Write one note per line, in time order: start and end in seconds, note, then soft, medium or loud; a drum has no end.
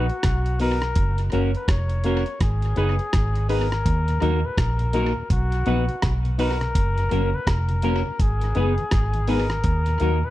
0.00 0.60 F#4 medium
0.09 0.16 F#4 soft
0.09 0.16 B4 soft
0.09 closed hi-hat soft
0.23 0.93 B1 medium
0.23 kick loud
0.23 cross-stick loud
0.23 closed hi-hat medium
0.46 closed hi-hat soft
0.60 0.76 B3 medium
0.60 0.78 B3 medium
0.60 0.76 D#4 medium
0.60 0.78 D#4 medium
0.60 0.77 F#4 medium
0.60 0.78 F#4 medium
0.60 1.22 A#4 loud
0.60 0.77 B4 medium
0.60 0.79 B4 medium
0.60 open hi-hat medium
0.82 cross-stick medium
0.82 closed hi-hat soft
0.95 1.30 F#1 medium
0.95 kick loud
0.95 closed hi-hat loud
1.18 closed hi-hat medium
1.32 1.54 F#1 medium
1.32 1.49 A#3 medium
1.32 1.50 A#3 medium
1.32 1.49 C#4 medium
1.32 1.51 C#4 medium
1.32 1.49 F#4 medium
1.32 1.51 F#4 medium
1.32 1.49 A#4 loud
1.32 1.51 A#4 medium
1.32 closed hi-hat medium
1.55 1.71 B4 medium
1.55 closed hi-hat soft
1.68 2.23 F1 medium
1.68 2.42 C#5 medium
1.68 kick loud
1.68 cross-stick loud
1.68 closed hi-hat medium
1.89 closed hi-hat soft
2.04 2.21 A#3 medium
2.04 2.23 A#3 medium
2.04 2.21 C#4 medium
2.04 2.23 C#4 medium
2.04 2.21 F#4 medium
2.04 2.23 F#4 medium
2.04 2.21 A#4 medium
2.04 2.23 A#4 medium
2.04 closed hi-hat medium
2.26 muted clean electric guitar stroke soft
2.26 closed hi-hat soft
2.40 2.75 G#1 medium
2.40 3.46 G#4 medium
2.40 kick loud
2.40 cross-stick medium
2.40 closed hi-hat medium
2.62 closed hi-hat soft
2.76 2.98 F#1 medium
2.76 2.93 B3 medium
2.76 2.95 B3 medium
2.76 2.93 D#4 medium
2.76 2.95 D#4 medium
2.76 2.93 G#4 medium
2.76 2.95 G#4 medium
2.76 2.94 B4 loud
2.76 2.95 B4 medium
2.76 closed hi-hat soft
2.99 3.05 G#4 soft
2.99 3.05 B4 soft
2.99 closed hi-hat soft
3.13 3.82 G#1 medium
3.13 kick loud
3.13 cross-stick loud
3.13 closed hi-hat medium
3.35 closed hi-hat soft
3.49 3.67 B3 medium
3.49 3.65 B3 medium
3.49 3.66 D#4 medium
3.49 3.67 D#4 medium
3.49 3.66 G#4 medium
3.49 3.67 G#4 medium
3.49 4.47 A#4 medium
3.49 3.66 B4 medium
3.49 3.67 B4 medium
3.49 open hi-hat medium
3.72 cross-stick medium
3.72 closed hi-hat soft
3.86 4.20 D#2 loud
3.86 kick loud
3.86 closed hi-hat medium
4.08 4.15 D#2 medium
4.08 4.15 A#2 medium
4.08 closed hi-hat soft
4.21 4.43 D#2 medium
4.21 4.32 F#3 medium
4.21 4.38 A#3 medium
4.21 4.39 A#3 medium
4.21 4.32 A#3 medium
4.21 4.38 D#4 medium
4.21 4.39 D#4 medium
4.21 4.32 D#4 medium
4.21 4.38 F#4 medium
4.21 4.40 F#4 loud
4.21 4.38 A#4 loud
4.21 4.40 A#4 medium
4.21 closed hi-hat medium
4.45 4.51 D#2 medium
4.45 4.51 A#2 medium
4.45 4.60 B4 medium
4.58 5.12 A#1 medium
4.58 5.31 A#4 medium
4.58 kick loud
4.58 cross-stick loud
4.58 closed hi-hat medium
4.79 4.87 D#2 soft
4.79 4.87 A#2 medium
4.79 muted clean electric guitar stroke soft
4.79 closed hi-hat soft
4.93 5.05 F#3 medium
4.93 5.10 A#3 medium
4.93 5.12 A#3 medium
4.93 5.05 A#3 medium
4.93 5.10 D#4 medium
4.93 5.12 D#4 medium
4.93 5.05 D#4 medium
4.93 5.10 F#4 medium
4.93 5.12 F#4 medium
4.93 5.11 A#4 medium
4.93 5.12 A#4 medium
4.93 closed hi-hat medium
5.16 5.23 D#2 soft
5.16 5.23 A#2 medium
5.30 5.64 B1 medium
5.30 6.10 F#4 medium
5.30 kick loud
5.30 closed hi-hat medium
5.52 5.59 B2 medium
5.52 closed hi-hat medium
5.66 5.87 A#1 medium
5.66 5.77 F#3 medium
5.66 5.83 B3 medium
5.66 5.84 B3 medium
5.66 5.77 B3 medium
5.66 5.84 D#4 medium
5.66 5.83 D#4 medium
5.66 5.77 D#4 medium
5.66 5.84 F#4 medium
5.66 5.83 F#4 medium
5.66 5.83 B4 loud
5.66 5.85 B4 loud
5.66 closed hi-hat medium
5.89 5.95 B2 medium
5.89 5.94 F#4 soft
5.89 5.94 B4 soft
5.89 closed hi-hat soft
6.02 6.71 B1 medium
6.02 kick loud
6.02 cross-stick loud
6.02 closed hi-hat medium
6.25 6.31 B2 medium
6.25 closed hi-hat soft
6.38 6.49 F#3 medium
6.38 6.55 B3 medium
6.38 6.56 B3 medium
6.38 6.49 B3 medium
6.38 6.55 D#4 medium
6.38 6.56 D#4 medium
6.38 6.50 D#4 medium
6.38 6.55 F#4 medium
6.38 6.57 F#4 medium
6.38 7.36 A#4 loud
6.38 6.55 B4 medium
6.38 6.57 B4 medium
6.38 open hi-hat medium
6.61 6.68 B2 medium
6.61 cross-stick medium
6.61 closed hi-hat soft
6.75 7.09 F#1 medium
6.75 kick loud
6.75 closed hi-hat loud
6.98 7.04 F#2 medium
6.98 7.04 C#3 medium
6.98 closed hi-hat medium
7.11 7.32 F#1 medium
7.11 7.22 F#3 medium
7.11 7.27 A#3 medium
7.11 7.29 A#3 medium
7.11 7.22 A#3 medium
7.11 7.28 C#4 medium
7.11 7.29 C#4 medium
7.11 7.22 C#4 medium
7.11 7.28 F#4 medium
7.11 7.29 F#4 medium
7.11 7.28 A#4 medium
7.11 7.29 A#4 medium
7.11 closed hi-hat medium
7.34 7.40 F#2 medium
7.34 7.40 C#3 medium
7.34 7.50 B4 medium
7.47 8.02 F1 medium
7.47 8.22 A#4 medium
7.47 kick loud
7.47 cross-stick loud
7.47 closed hi-hat medium
7.69 7.76 F#2 medium
7.69 7.76 C#3 medium
7.69 closed hi-hat soft
7.82 7.94 F#3 medium
7.82 7.99 A#3 medium
7.82 8.01 A#3 medium
7.82 7.94 A#3 medium
7.82 8.00 C#4 medium
7.82 8.01 C#4 medium
7.82 7.94 C#4 medium
7.82 8.00 F#4 medium
7.82 8.01 F#4 medium
7.82 8.00 A#4 medium
7.82 8.02 A#4 loud
7.82 closed hi-hat medium
8.06 8.12 F#2 soft
8.06 8.12 C#3 medium
8.06 muted clean electric guitar stroke soft
8.19 8.53 G#1 medium
8.19 9.31 G#4 medium
8.19 kick loud
8.19 closed hi-hat medium
8.41 8.49 G#2 medium
8.41 8.49 D#3 medium
8.41 closed hi-hat soft
8.55 8.77 F#1 medium
8.55 8.66 G#3 medium
8.55 8.72 B3 medium
8.55 8.73 B3 medium
8.55 8.67 B3 medium
8.55 8.72 D#4 medium
8.55 8.74 D#4 medium
8.55 8.67 D#4 medium
8.55 8.72 G#4 medium
8.55 8.74 G#4 medium
8.55 8.72 B4 medium
8.55 8.74 B4 medium
8.55 closed hi-hat soft
8.78 8.85 G#2 medium
8.78 8.85 D#3 medium
8.78 closed hi-hat soft
8.91 9.61 G#1 medium
8.91 kick loud
8.91 cross-stick loud
8.91 closed hi-hat medium
9.13 9.21 G#2 medium
9.13 9.21 D#3 medium
9.13 closed hi-hat soft
9.27 9.39 G#3 medium
9.27 9.44 B3 medium
9.27 9.46 B3 medium
9.27 9.39 B3 medium
9.27 9.44 D#4 medium
9.27 9.46 D#4 medium
9.27 9.39 D#4 medium
9.27 9.44 G#4 medium
9.27 9.46 G#4 medium
9.27 10.26 A#4 loud
9.27 9.45 B4 medium
9.27 9.46 B4 medium
9.27 open hi-hat medium
9.50 9.57 G#2 medium
9.50 9.57 D#3 medium
9.50 cross-stick medium
9.50 closed hi-hat soft
9.64 9.98 D#2 medium
9.64 kick loud
9.64 closed hi-hat medium
9.86 9.94 D#2 medium
9.86 9.94 A#2 medium
9.86 closed hi-hat soft
10.00 10.22 D#2 medium
10.00 10.11 F#3 medium
10.00 10.17 A#3 medium
10.00 10.18 A#3 medium
10.00 10.11 A#3 medium
10.00 10.17 D#4 medium
10.00 10.11 D#4 medium
10.00 10.18 D#4 medium
10.00 10.17 F#4 medium
10.00 10.19 F#4 medium
10.00 10.17 A#4 loud
10.00 10.19 A#4 medium
10.00 closed hi-hat medium
10.23 10.30 D#2 medium
10.23 10.30 A#2 medium
10.23 10.30 B4 medium